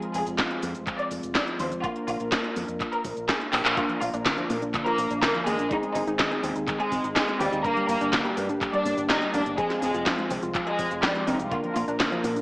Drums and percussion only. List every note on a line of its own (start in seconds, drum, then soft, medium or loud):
0.02 closed hi-hat soft
0.14 open hi-hat loud
0.14 cabasa medium
0.26 closed hi-hat soft
0.26 cabasa soft
0.38 kick loud
0.38 snare loud
0.38 clap medium
0.38 closed hi-hat medium
0.38 cabasa soft
0.51 closed hi-hat soft
0.63 open hi-hat loud
0.63 cabasa medium
0.75 closed hi-hat soft
0.75 cabasa soft
0.87 kick loud
0.87 clap soft
0.87 closed hi-hat medium
0.87 cabasa soft
0.99 closed hi-hat soft
1.11 open hi-hat loud
1.11 cabasa medium
1.23 closed hi-hat soft
1.23 cabasa soft
1.35 kick loud
1.35 snare loud
1.35 clap medium
1.35 closed hi-hat medium
1.35 cabasa soft
1.47 closed hi-hat soft
1.59 open hi-hat loud
1.59 cabasa medium
1.72 closed hi-hat soft
1.72 cabasa soft
1.84 kick loud
1.84 closed hi-hat medium
1.84 cabasa soft
1.96 closed hi-hat soft
2.08 open hi-hat loud
2.08 cabasa medium
2.20 closed hi-hat soft
2.20 cabasa soft
2.32 kick loud
2.32 snare loud
2.32 clap medium
2.32 closed hi-hat medium
2.32 cabasa soft
2.44 closed hi-hat soft
2.56 open hi-hat loud
2.56 cabasa medium
2.68 closed hi-hat soft
2.68 cabasa soft
2.80 kick loud
2.80 clap soft
2.80 closed hi-hat medium
2.80 cabasa soft
2.93 closed hi-hat soft
3.05 kick medium
3.05 open hi-hat loud
3.05 cabasa medium
3.17 closed hi-hat soft
3.17 cabasa soft
3.29 kick loud
3.29 snare loud
3.29 clap medium
3.29 closed hi-hat medium
3.29 cabasa soft
3.41 closed hi-hat soft
3.53 clap medium
3.53 open hi-hat loud
3.53 cabasa medium
3.65 clap loud
3.65 closed hi-hat soft
3.65 cabasa soft
3.77 kick loud
3.77 closed hi-hat medium
3.77 cabasa soft
3.89 closed hi-hat soft
4.01 open hi-hat loud
4.01 cabasa medium
4.14 closed hi-hat soft
4.14 cabasa soft
4.26 kick loud
4.26 snare loud
4.26 clap loud
4.26 closed hi-hat medium
4.26 cabasa soft
4.38 closed hi-hat soft
4.50 open hi-hat loud
4.50 cabasa medium
4.62 closed hi-hat soft
4.62 cabasa soft
4.74 kick loud
4.74 clap medium
4.74 closed hi-hat medium
4.74 cabasa soft
4.86 closed hi-hat soft
4.98 open hi-hat loud
4.98 cabasa medium
5.10 closed hi-hat soft
5.10 cabasa soft
5.22 kick loud
5.22 snare loud
5.22 clap medium
5.22 closed hi-hat medium
5.22 cabasa soft
5.35 closed hi-hat soft
5.47 open hi-hat loud
5.47 cabasa medium
5.59 closed hi-hat soft
5.59 cabasa soft
5.71 kick loud
5.71 closed hi-hat medium
5.71 cabasa soft
5.83 closed hi-hat soft
5.95 open hi-hat loud
5.95 cabasa medium
6.07 closed hi-hat soft
6.07 cabasa soft
6.19 kick loud
6.19 snare loud
6.19 clap medium
6.19 closed hi-hat medium
6.19 cabasa soft
6.31 closed hi-hat soft
6.44 open hi-hat loud
6.44 cabasa medium
6.56 closed hi-hat soft
6.56 cabasa soft
6.68 kick loud
6.68 clap medium
6.68 closed hi-hat medium
6.68 cabasa soft
6.80 closed hi-hat soft
6.92 kick medium
6.92 open hi-hat loud
6.92 cabasa medium
7.04 closed hi-hat soft
7.04 cabasa soft
7.16 kick loud
7.16 snare loud
7.16 clap loud
7.16 closed hi-hat medium
7.28 closed hi-hat soft
7.40 open hi-hat loud
7.40 cabasa medium
7.52 closed hi-hat soft
7.52 cabasa soft
7.64 kick loud
7.64 closed hi-hat medium
7.64 cabasa soft
7.77 closed hi-hat soft
7.89 open hi-hat loud
7.89 cabasa medium
8.01 closed hi-hat soft
8.01 cabasa soft
8.13 kick loud
8.13 snare loud
8.13 clap medium
8.13 closed hi-hat medium
8.13 cabasa soft
8.25 closed hi-hat soft
8.37 open hi-hat loud
8.37 cabasa medium
8.49 closed hi-hat soft
8.49 cabasa soft
8.61 kick loud
8.61 clap medium
8.61 closed hi-hat medium
8.61 cabasa soft
8.74 closed hi-hat soft
8.86 open hi-hat medium
8.86 cabasa medium
8.98 closed hi-hat soft
8.98 cabasa soft
9.10 kick loud
9.10 snare loud
9.10 clap medium
9.10 closed hi-hat medium
9.10 cabasa soft
9.22 closed hi-hat soft
9.34 open hi-hat loud
9.34 cabasa medium
9.46 closed hi-hat soft
9.46 cabasa soft
9.58 kick loud
9.58 closed hi-hat medium
9.58 cabasa soft
9.70 snare soft
9.70 closed hi-hat soft
9.82 open hi-hat loud
9.82 cabasa medium
9.94 closed hi-hat soft
9.94 cabasa soft
10.06 kick loud
10.06 snare loud
10.06 clap medium
10.06 closed hi-hat medium
10.06 cabasa soft
10.18 closed hi-hat soft
10.30 open hi-hat loud
10.30 cabasa medium
10.43 closed hi-hat soft
10.43 cabasa soft
10.55 kick loud
10.55 clap medium
10.55 closed hi-hat medium
10.55 cabasa soft
10.67 closed hi-hat soft
10.79 kick medium
10.79 open hi-hat loud
10.79 cabasa medium
10.91 closed hi-hat soft
10.91 cabasa soft
11.03 kick loud
11.03 snare loud
11.03 clap medium
11.03 closed hi-hat medium
11.03 cabasa soft
11.15 closed hi-hat soft
11.27 open hi-hat loud
11.27 cabasa medium
11.39 closed hi-hat soft
11.39 cabasa soft
11.52 kick loud
11.52 closed hi-hat medium
11.52 cabasa soft
11.64 closed hi-hat soft
11.76 open hi-hat loud
11.76 cabasa medium
11.88 closed hi-hat soft
11.88 cabasa soft
12.00 kick loud
12.00 snare loud
12.00 clap medium
12.00 closed hi-hat medium
12.00 cabasa soft
12.12 closed hi-hat soft
12.24 open hi-hat loud
12.24 cabasa medium
12.36 closed hi-hat soft
12.36 cabasa soft